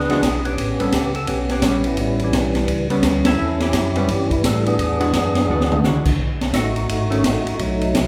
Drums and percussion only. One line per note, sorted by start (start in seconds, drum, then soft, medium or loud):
0.00 snare soft
0.10 snare soft
0.10 ride soft
0.23 kick soft
0.23 snare medium
0.23 hi-hat pedal medium
0.23 ride medium
0.45 ride soft
0.58 kick soft
0.58 ride medium
0.80 ride soft
0.92 kick soft
0.92 snare medium
0.92 hi-hat pedal medium
0.92 ride medium
1.15 ride soft
1.27 kick soft
1.27 ride medium
1.49 snare soft
1.49 ride soft
1.62 kick soft
1.62 snare medium
1.62 hi-hat pedal medium
1.62 ride medium
1.84 ride soft
1.97 kick soft
1.97 ride medium
2.19 ride soft
2.33 kick soft
2.33 snare medium
2.33 hi-hat pedal medium
2.33 ride medium
2.55 snare soft
2.55 ride soft
2.68 kick soft
2.68 ride medium
2.90 ride soft
3.03 kick soft
3.03 snare medium
3.03 hi-hat pedal medium
3.03 ride medium
3.25 snare medium
3.25 ride medium
3.60 snare medium
3.60 ride soft
3.73 kick soft
3.73 snare medium
3.73 hi-hat pedal soft
3.73 ride medium
3.96 ride soft
4.08 kick soft
4.08 ride medium
4.31 kick soft
4.31 ride soft
4.44 kick soft
4.44 snare medium
4.44 hi-hat pedal medium
4.44 ride medium
4.66 ride soft
4.79 kick soft
4.79 ride medium
5.01 ride soft
5.13 kick soft
5.13 snare medium
5.13 hi-hat pedal soft
5.13 ride medium
5.35 snare medium
5.35 ride soft
5.60 snare medium
5.72 mid tom medium
5.84 snare medium
5.84 hi-hat pedal medium
6.05 kick medium
6.05 crash medium
6.19 kick soft
6.41 snare medium
6.41 ride soft
6.53 kick soft
6.53 snare medium
6.53 hi-hat pedal medium
6.53 ride medium
6.76 ride soft
6.89 kick soft
6.89 ride medium
7.12 ride soft
7.24 kick soft
7.24 snare medium
7.24 hi-hat pedal medium
7.24 ride medium
7.47 ride soft
7.59 kick soft
7.59 ride medium
7.81 ride soft
7.94 kick soft
7.94 snare medium
7.94 hi-hat pedal medium
7.94 ride medium